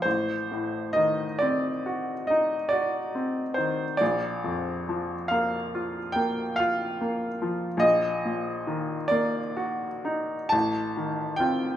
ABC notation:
X:1
M:9/8
L:1/8
Q:3/8=47
K:Bb
V:1 name="Grand piano"
c2 e d2 e d2 c | d3 f2 g f3 | e3 d3 a2 g |]
V:2 name="Grand piano"
A,,, A,, E, C ^F E F C E, | B,,, F,, F, B, F B, F B, F, | B,,, B,, E, B, _G E A,,, E, [CF] |]